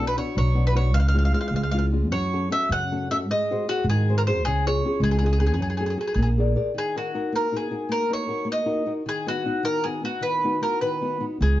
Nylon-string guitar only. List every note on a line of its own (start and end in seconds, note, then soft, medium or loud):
0.00 0.15 B2 medium
0.00 0.16 B3 medium
0.00 0.16 D4 soft
0.00 0.16 F#4 medium
0.17 0.48 B3 soft
0.17 0.49 D4 soft
0.17 0.49 F#4 medium
0.35 0.74 F#3 medium
0.54 0.73 B3 medium
0.54 0.73 D4 soft
0.54 0.74 F#4 medium
0.74 0.90 B3 medium
0.74 0.90 D4 soft
0.74 0.90 F#4 medium
0.95 1.32 C#3 medium
1.14 1.31 G#3 soft
1.14 1.32 C#4 soft
1.14 1.32 F4 medium
1.32 1.52 G#3 medium
1.32 1.65 C#4 soft
1.32 1.65 F4 medium
1.53 1.73 G#3 medium
1.74 1.91 G#3 soft
1.74 1.91 C#4 soft
1.74 1.92 F4 medium
1.92 2.07 G#3 soft
1.92 2.07 C#4 soft
1.92 2.08 F4 soft
2.11 2.49 F#3 medium
2.33 2.49 C#4 soft
2.33 2.49 F#4 soft
2.33 2.50 A4 medium
2.50 2.82 C#4 medium
2.50 2.82 F#4 soft
2.50 2.82 A4 medium
2.71 3.08 C#3 medium
2.92 3.10 C#4 medium
2.92 3.10 F#4 soft
2.92 3.10 A4 medium
3.11 3.25 C#4 soft
3.11 3.25 F#4 medium
3.11 3.25 A4 medium
3.31 3.67 G#3 medium
3.51 3.67 F#4 medium
3.51 3.68 G#4 medium
3.51 3.68 C5 medium
3.68 3.98 F#4 medium
3.68 3.99 G#4 soft
3.68 3.99 C5 medium
3.89 4.25 D#3 medium
4.09 4.27 F#4 medium
4.09 4.27 G#4 soft
4.09 4.28 C5 medium
4.28 4.41 F#4 medium
4.28 4.41 G#4 medium
4.28 4.42 C5 medium
4.46 4.82 C#3 medium
4.66 4.84 C#4 medium
4.66 4.84 F4 medium
4.66 4.85 G#4 medium
4.85 5.15 C#4 medium
4.85 5.15 F4 soft
4.85 5.15 G#4 medium
5.01 5.39 G#3 medium
5.21 5.39 C#4 medium
5.21 5.40 F4 soft
5.21 5.40 G#4 medium
5.40 5.55 C#4 medium
5.40 5.55 F4 soft
5.40 5.55 G#4 medium
5.58 5.96 F#3 medium
5.80 5.96 F#4 medium
5.80 5.96 G#4 soft
5.80 5.96 A4 medium
5.97 6.13 F#4 medium
5.97 6.12 G#4 soft
5.97 6.13 A4 medium
6.18 6.56 A#3 medium
6.38 6.55 G#4 soft
6.38 6.55 A#4 soft
6.38 6.56 D5 medium
6.56 6.71 G#4 soft
6.56 6.71 A#4 soft
6.56 6.72 D5 medium
6.74 7.13 D#3 medium
6.96 7.13 D#4 soft
6.96 7.13 F#4 soft
6.96 7.14 A#4 medium
7.14 7.46 D#4 soft
7.14 7.46 F#4 soft
7.14 7.46 A#4 medium
7.32 7.71 A#3 medium
7.52 7.70 D#4 soft
7.52 7.70 F#4 soft
7.52 7.70 A#4 medium
7.71 8.03 D#4 soft
7.71 8.03 F#4 soft
7.71 8.03 A#4 soft
7.89 8.28 A#3 medium
8.10 8.26 D#4 medium
8.10 8.27 F#4 soft
8.10 8.27 A#4 soft
8.27 8.60 D#4 soft
8.27 8.60 F#4 soft
8.27 8.61 A#4 medium
8.45 8.85 A#3 medium
8.66 8.85 D#4 soft
8.66 8.85 F#4 soft
8.66 8.86 A#4 medium
8.86 9.02 D#4 soft
8.86 9.02 F#4 soft
8.86 9.02 A#4 medium
9.06 9.44 D#3 medium
9.27 9.44 B3 medium
9.27 9.44 D#4 soft
9.27 9.45 F#4 medium
9.45 9.77 B3 soft
9.45 9.77 D#4 soft
9.45 9.78 F#4 medium
9.63 10.03 D#3 medium
9.85 10.02 B3 soft
9.85 10.02 D#4 soft
9.85 10.03 F#4 medium
10.03 10.36 B3 soft
10.03 10.36 D#4 soft
10.03 10.36 F#4 medium
10.21 10.61 D#3 medium
10.44 10.60 B3 soft
10.44 10.60 D#4 soft
10.44 10.61 F#4 soft
10.62 10.95 B3 medium
10.62 10.95 D#4 soft
10.62 10.95 F#4 medium
10.82 11.21 D#3 medium
11.01 11.19 B3 soft
11.01 11.19 D#4 soft
11.01 11.19 F#4 medium
11.20 11.37 B3 soft
11.20 11.37 D#4 soft
11.20 11.37 F#4 medium
11.41 11.60 C#3 medium